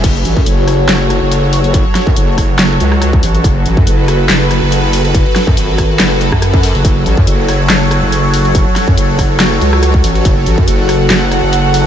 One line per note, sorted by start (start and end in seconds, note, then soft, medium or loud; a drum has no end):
0.04 0.24 F#1 loud
0.04 11.87 F#3 medium
0.04 11.87 F#4 medium
0.04 11.87 A4 medium
0.04 3.43 C#5 medium
0.04 kick loud
0.04 closed hi-hat medium
0.04 crash loud
0.25 0.35 A1 loud
0.25 closed hi-hat medium
0.37 0.45 F#2 loud
0.37 kick loud
0.46 0.87 F#1 loud
0.46 closed hi-hat medium
0.68 cross-stick medium
0.68 open hi-hat medium
0.89 1.20 F#1 medium
0.89 snare loud
0.89 clap medium
0.89 closed hi-hat medium
1.10 cross-stick medium
1.10 closed hi-hat medium
1.22 1.84 F#1 loud
1.31 closed hi-hat medium
1.53 open hi-hat medium
1.64 closed hi-hat soft
1.74 kick loud
1.74 closed hi-hat medium
1.95 snare medium
1.95 closed hi-hat medium
2.07 2.15 F#2 loud
2.07 kick loud
2.16 2.79 F#1 loud
2.16 closed hi-hat medium
2.38 kick medium
2.38 cross-stick medium
2.38 open hi-hat medium
2.59 snare loud
2.59 clap loud
2.59 closed hi-hat medium
2.80 3.21 C#2 loud
2.80 closed hi-hat medium
2.92 cross-stick medium
3.02 cross-stick medium
3.02 closed hi-hat medium
3.13 kick loud
3.23 3.43 A1 loud
3.23 open hi-hat medium
3.35 closed hi-hat soft
3.44 3.64 F#1 loud
3.44 6.84 B4 medium
3.44 kick loud
3.44 closed hi-hat medium
3.66 3.75 A1 loud
3.66 closed hi-hat medium
3.77 3.85 F#2 loud
3.77 kick loud
3.87 4.28 F#1 loud
3.87 closed hi-hat medium
4.08 cross-stick medium
4.08 open hi-hat medium
4.29 4.60 F#1 loud
4.29 snare loud
4.29 clap loud
4.29 closed hi-hat medium
4.51 cross-stick medium
4.51 closed hi-hat medium
4.62 5.24 F#1 loud
4.72 closed hi-hat medium
4.93 open hi-hat medium
5.05 closed hi-hat soft
5.14 kick loud
5.14 closed hi-hat medium
5.36 snare medium
5.36 closed hi-hat medium
5.47 5.55 F#2 medium
5.47 kick loud
5.57 5.98 G#1 loud
5.57 closed hi-hat medium
5.78 kick medium
5.78 cross-stick medium
5.78 open hi-hat medium
6.00 6.31 F#1 medium
6.00 snare loud
6.00 clap medium
6.00 closed hi-hat medium
6.21 closed hi-hat soft
6.32 6.73 F#2 loud
6.32 kick medium
6.32 cross-stick medium
6.42 cross-stick medium
6.42 closed hi-hat medium
6.54 kick loud
6.63 open hi-hat loud
6.75 6.83 F#1 loud
6.75 closed hi-hat soft
6.85 7.04 F#1 loud
6.85 10.24 C#5 medium
6.85 kick loud
6.85 closed hi-hat medium
7.06 7.16 A1 medium
7.06 closed hi-hat medium
7.17 7.26 F#2 medium
7.17 kick loud
7.27 7.68 F#1 medium
7.27 closed hi-hat medium
7.49 cross-stick medium
7.49 open hi-hat medium
7.70 8.01 F#1 loud
7.70 snare loud
7.70 clap medium
7.70 closed hi-hat medium
7.91 cross-stick medium
7.91 closed hi-hat medium
8.03 8.65 F#1 loud
8.12 closed hi-hat medium
8.34 open hi-hat medium
8.45 closed hi-hat soft
8.55 kick loud
8.55 closed hi-hat medium
8.76 snare medium
8.76 closed hi-hat medium
8.88 8.96 F#2 medium
8.88 kick medium
8.97 9.60 F#1 loud
8.97 closed hi-hat medium
9.19 kick medium
9.19 cross-stick medium
9.19 open hi-hat medium
9.40 snare loud
9.40 clap medium
9.40 closed hi-hat medium
9.61 10.02 C#2 loud
9.61 closed hi-hat medium
9.73 cross-stick medium
9.83 cross-stick medium
9.83 closed hi-hat medium
9.94 kick loud
10.04 10.24 A1 loud
10.04 open hi-hat loud
10.15 closed hi-hat soft
10.25 10.45 F#1 loud
10.25 11.87 F#5 medium
10.25 kick loud
10.25 closed hi-hat medium
10.46 10.56 A1 medium
10.46 closed hi-hat medium
10.58 10.66 F#2 loud
10.58 kick medium
10.68 11.09 F#1 medium
10.68 closed hi-hat medium
10.89 cross-stick medium
10.89 open hi-hat medium
11.10 11.41 F#1 loud
11.10 snare loud
11.10 clap medium
11.10 closed hi-hat medium
11.31 cross-stick medium
11.31 closed hi-hat medium
11.43 11.87 F#1 loud
11.53 closed hi-hat medium
11.74 open hi-hat loud